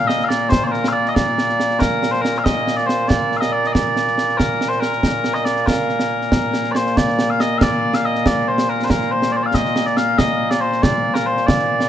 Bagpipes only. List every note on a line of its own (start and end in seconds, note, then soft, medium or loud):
0.00 11.89 A#2 medium
0.00 11.89 A#3 medium
0.07 0.24 D#5 loud
0.24 0.28 F5 medium
0.28 0.49 D5 medium
0.49 0.64 C5 medium
0.64 0.72 C5 medium
0.64 0.67 D5 medium
0.72 0.88 A#4 medium
0.88 0.92 F5 loud
0.92 1.08 D5 loud
1.08 1.14 D#5 medium
1.14 1.80 D5 loud
1.80 2.11 A#4 medium
2.11 2.22 C5 medium
2.22 2.38 A#4 medium
2.38 2.44 F5 medium
2.44 2.76 D#5 loud
2.76 2.86 D5 medium
2.86 3.08 C5 medium
3.08 3.37 D5 medium
3.37 3.52 D#5 medium
3.37 3.40 F5 medium
3.52 3.67 D5 loud
3.67 3.72 D#5 medium
3.72 4.38 D5 medium
4.38 4.69 A#4 medium
4.69 4.80 C5 medium
4.80 5.34 A#4 medium
5.34 5.45 D#5 medium
5.45 5.66 D5 medium
5.66 6.72 A#4 medium
6.72 6.76 D5 medium
6.76 6.97 C5 medium
6.97 7.30 D5 medium
7.30 7.40 F5 medium
7.40 7.58 D#5 loud
7.58 7.62 F5 loud
7.62 7.94 D5 loud
7.94 8.05 F5 loud
8.05 8.26 D#5 medium
8.26 8.48 D5 loud
8.48 8.69 C5 medium
8.69 8.85 A#4 medium
8.85 8.90 C5 medium
8.90 9.12 A#4 medium
9.12 9.32 C5 medium
9.32 9.37 D5 medium
9.37 9.43 C5 medium
9.43 9.46 D5 loud
9.43 9.54 F5 medium
9.54 9.86 D#5 loud
9.86 9.97 D5 medium
9.97 10.18 F5 loud
10.18 10.50 D#5 loud
10.50 10.61 D5 medium
10.61 10.83 C5 medium
10.83 11.14 D5 loud
11.14 11.26 A#4 medium
11.26 11.46 C5 loud
11.46 11.89 D5 medium